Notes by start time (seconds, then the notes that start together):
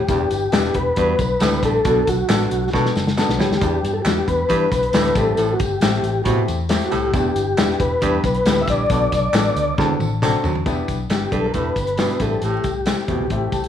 Already playing: G4
0.08 E1 E2 B3 D4 E4 G4, kick, closed hi-hat, tambourine
0.30 G1, closed hi-hat, tambourine
0.52 E1 B3 D4 E4 G4, snare, clap, closed hi-hat, tambourine
0.64 snare
0.74 E1 B4, kick, closed hi-hat
0.96 E2 G2 B3 D4 E4 F#4, kick, closed hi-hat, tambourine
1.19 B1 B4, kick, closed hi-hat, tambourine
1.40 D2 A2 B3 D4 E4 G4, snare, clap, closed hi-hat, tambourine
1.53 B4, snare
1.63 A#1 G2 A4, kick, closed hi-hat, tambourine
1.84 B1 B2 B3 D4 F#4 A4, kick, closed hi-hat, tambourine
2.07 B1 F#4, kick, closed hi-hat, tambourine
2.29 A1 B3 D4 F#4 A4, snare, clap, closed hi-hat, tambourine
2.41 snare
2.51 B1, closed hi-hat, tambourine
2.73 B2 B3 D4 F#4 A4, kick, snare
2.86 snare
2.95 F#1, snare, tambourine
3.07 snare
3.17 B3 D4 F#4 A4, snare, clap, tambourine
3.29 B1, snare
3.39 D2 A2 G4, snare, tambourine
3.50 D#2, snare
3.60 E2 B3 D4 E4 G4, kick, closed hi-hat, tambourine
3.83 G2, closed hi-hat, tambourine
3.94 A4
4.02 E2 E4 G4, clap, closed hi-hat, tambourine
4.06 B3 D4 F#4, snare
4.19 G4
4.28 E2 B4, kick, closed hi-hat, tambourine
4.49 G2 E3 B3 D4 E4 G4, kick, closed hi-hat
4.72 B1 B4, kick, closed hi-hat, tambourine
4.83 closed hi-hat
4.93 D2 A2 B3 D4 E4 G4, snare, clap, closed hi-hat, tambourine
5.05 snare, closed hi-hat
5.15 A1 G2 A3 C4 E4 G4 A4, kick, closed hi-hat, tambourine
5.37 A1 A2, closed hi-hat, tambourine
5.53 F#4
5.60 G1 G4, kick, closed hi-hat, tambourine
5.81 A1 A3 C4 E4 G4, snare, clap, closed hi-hat, tambourine
5.94 snare
6.03 A1, closed hi-hat, tambourine
6.24 A2 B2 A3 C4 E4 G4, kick, closed hi-hat, tambourine
6.48 E2, closed hi-hat, tambourine
6.69 A3 C4 E4 G4, snare, clap, closed hi-hat, tambourine
6.81 F#4, snare, closed hi-hat
6.91 C2 A2 G4, closed hi-hat, tambourine
7.13 E1 E2 B3 D4 E4 G4, kick, closed hi-hat, tambourine
7.35 G1, closed hi-hat, tambourine
7.57 E1 B3 D4 E4 G4, snare, clap, closed hi-hat, tambourine
7.70 snare
7.80 E1 B4, kick, closed hi-hat, tambourine
8.02 E2 G2 B3 D4 E4 G4, kick, closed hi-hat, tambourine
8.24 B1 B4, kick, closed hi-hat, tambourine
8.34 closed hi-hat
8.45 D2 A2 B3 D4 E4 G4, snare, clap, closed hi-hat, tambourine
8.57 E5, snare
8.67 A#1 G2 D5, kick, closed hi-hat, tambourine
8.89 B1 B2 B3 D4 F#4 A4, kick, closed hi-hat, tambourine
9.12 B1 D5, kick, closed hi-hat, tambourine
9.33 A1 B3 D4 F#4 A4, snare, clap, closed hi-hat, tambourine
9.55 D2, closed hi-hat, tambourine
9.77 E2 D3 C4 D4 F#4 A4, kick, snare
9.99 A1, high tom, tambourine
10.22 C4 D4 F#4 A4, clap, mid tom, tambourine
10.43 D#2 F#2, floor tom, tambourine
10.55 floor tom
10.65 E1 E2 B3 D4 E4 G4, kick, closed hi-hat, tambourine
10.88 B1, kick, closed hi-hat, tambourine
11.09 G1 B3 D4 E4 G4, snare, clap, closed hi-hat, tambourine
11.31 B1 G2 B3 D4 E4 G4 A4, kick, closed hi-hat
11.46 A#4
11.53 E1 A2 B3 D4 E4 G4 B4, kick, closed hi-hat, tambourine
11.76 G1, kick, closed hi-hat, tambourine
11.87 closed hi-hat
11.97 B2 B3 D4 E4 G4, snare, clap, closed hi-hat, tambourine
12.10 snare, closed hi-hat
12.19 A1 G2 A3 C4 E4 F#4 A4, kick, closed hi-hat, tambourine
12.25 G4
12.42 A1 A2 G4, closed hi-hat, tambourine
12.64 C2, kick, closed hi-hat, tambourine
12.86 A3 C4 E4 G4, snare, clap, closed hi-hat, tambourine
12.98 snare
13.08 E2 B2 A3 C4 E4 G4, kick, closed hi-hat
13.19 C2
13.30 A1 A3 C4 E4 G4, kick, closed hi-hat
13.52 C2 A5, kick, closed hi-hat, tambourine
13.64 closed hi-hat